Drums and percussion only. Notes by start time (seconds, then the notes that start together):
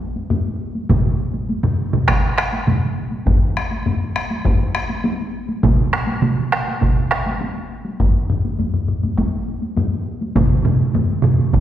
0.16 taiko high
0.30 taiko low-mid, taiko high
0.75 taiko high
0.89 taiko, taiko low-mid, taiko mid, taiko high
1.34 taiko high
1.49 taiko high
1.63 taiko low-mid, taiko mid
1.93 taiko low-mid, taiko mid, taiko high
2.08 taiko rim, taiko, taiko high
2.38 taiko rim
2.52 taiko high
2.67 taiko low-mid, taiko mid, taiko high
3.11 taiko high
3.27 taiko, taiko low-mid, taiko high
3.57 taiko rim
3.71 taiko high
3.86 taiko low-mid, taiko high
4.16 taiko rim
4.30 taiko high
4.45 taiko, taiko low-mid, taiko high
4.75 taiko rim
4.89 taiko high
5.04 taiko high
5.49 taiko high
5.63 taiko, taiko mid, taiko high
5.93 taiko rim
6.07 taiko high
6.22 taiko mid, taiko high
6.52 taiko rim
6.67 taiko high
6.81 taiko, taiko mid, taiko high
7.11 taiko rim
7.26 taiko high
7.41 taiko high
7.85 taiko high
8.00 taiko, taiko low-mid, taiko high
8.30 taiko low-mid
8.45 taiko high
8.59 taiko low-mid, taiko high
8.74 taiko low-mid
8.88 taiko low-mid
9.03 taiko low-mid, taiko high
9.17 taiko, taiko high
9.62 taiko high
9.77 taiko low-mid, taiko high
10.21 taiko high
10.35 taiko, taiko low-mid, taiko mid, taiko high
10.65 taiko low-mid, taiko mid, taiko high
10.80 taiko high
10.94 taiko low-mid, taiko mid, taiko high
11.24 taiko low-mid, taiko mid
11.39 taiko high
11.53 taiko, taiko low-mid, taiko mid, taiko high